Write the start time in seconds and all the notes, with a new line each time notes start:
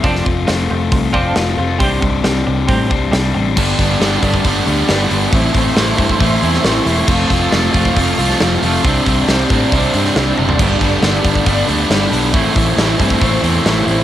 0.03 F1 F3 A3 C4 D4, kick, open hi-hat
0.08 F4
0.15 snare
0.25 F1 F3 C4, kick
0.47 F1 F3 A3 C4 F4, snare, open hi-hat
0.70 F1 F3 C4
0.92 C2 F3 C4, kick, open hi-hat
1.13 F1 F3 A3 C4 D4 F4, kick
1.35 F1 F3 A3 C4 F4, snare, open hi-hat
1.58 F1 F3 A3 C4 F4
1.78 C2 C3 G3 C4 D4, kick, open hi-hat
2.01 C2 C3 G3, kick
2.24 C2 C3 G3 C4, snare, open hi-hat
2.28 D4
2.47 C2 C3 G3
2.67 A2 C3 G3 C4, kick, open hi-hat
2.89 C2 C3 G3 C4 D4, kick
3.12 C2 C3 G3 C4 D4, snare, open hi-hat
3.34 A1 C3 G3 C4 D4
3.56 G1 G2 D3 G3 B3 D4 G4 D5 A5 B5, kick, crash
3.78 G1 G3 B3 D4, kick, open hi-hat
3.99 G1 G2 D3 G3 B3 D4, snare, open hi-hat
4.22 G1 G2 D3 G3 B3 D4, kick, open hi-hat
4.34 kick
4.44 G1 D3 G3 B3 D4, kick, open hi-hat
4.67 D2 G2 D3 G3 B3 D4, open hi-hat
4.88 G1 G2 D3 G3 B3 D4, snare, open hi-hat
5.10 G1 G3 B3 D4, open hi-hat
5.32 A1 A2 E3 A3 C4 E4 C5 C6, kick, open hi-hat
5.53 A1 A3 C4 E4, kick, open hi-hat
5.75 A1 A2 E3 A3 C4 E4, snare, open hi-hat
5.97 G2 A2 E3 A3 C4 E4, kick, open hi-hat
6.09 kick
6.19 A1 E3 A3 C4 E4, kick, open hi-hat
6.41 E2 A2 E3 A3 C4 E4, open hi-hat
6.54 snare
6.64 A1 A2 E3 A3 C4, snare, open hi-hat
6.68 E4
6.86 E1 C4 E4, open hi-hat
6.90 A3
7.07 F1 F3 A3 C4 F4 D5 A5 C6, kick, crash
7.12 F4
7.30 F1 C4 F4, kick, snare, open hi-hat
7.35 A3
7.52 F1 F3 A3 C4 F4, snare, open hi-hat
7.74 F1 F3 A3 C4 F4, kick, open hi-hat
7.85 kick
7.94 F1 F3 A3 C4, kick, open hi-hat
7.99 A3 C4 F4
8.18 C2 F3 A3 C4 F4, open hi-hat
8.30 snare
8.40 F1 F3 A3 C4 F4, snare, open hi-hat
8.62 F1 A3 C4 F4, open hi-hat
8.84 C2 C3 G3 C4 D4 C5 G5, kick, open hi-hat
9.06 C2 G3 C4 D4, kick, open hi-hat
9.28 C2 C3 G3 C4 D4, snare, open hi-hat
9.50 A2 C3 C4 D4, kick, open hi-hat
9.55 G3
9.72 C2 C3 G3 C4, kick, open hi-hat
9.76 D4
9.94 G2 G3 C4 D4, open hi-hat
9.99 C3
10.05 snare
10.16 C2 C3 G3 C4 D4, snare, open hi-hat
10.38 F#1 C4 D4, high tom
10.42 G3
10.49 floor tom
10.58 G1 G2 D3 A4 B5, kick, crash
10.62 G3 B3 D4
10.81 G1 B3 D4, kick, open hi-hat
10.85 G3
11.02 G1 G2 D3 G3 B3, snare, open hi-hat
11.07 D4
11.23 G1 G2 D3 B3 D4, kick, open hi-hat
11.27 G3 B3
11.35 kick
11.46 G1 D3 G3 B3, kick, open hi-hat
11.50 D4
11.68 D2 D3 G3 B3 D4, open hi-hat
11.72 G2
11.89 G1 G2 D3 G3 B3, snare, open hi-hat
11.94 D4
12.12 B1 B3 D4, open hi-hat
12.16 G3
12.33 A1 A2 E3 A3 C4 E4 C5 A5 C6, kick, open hi-hat
12.54 A1 A3 C4 E4, kick, open hi-hat
12.76 A1 A2 E3 A3 C4 E4, snare, open hi-hat
12.99 G2 A2 E3 A3 C4 E4, kick, open hi-hat
13.10 kick
13.20 A1 E3 A3 C4 E4, kick, open hi-hat
13.41 E2 A2 E3 A3 C4 E4, open hi-hat
13.64 A1 A2 E3 A3 C4 E4, snare, open hi-hat
13.86 A1 A3 C4 E4, open hi-hat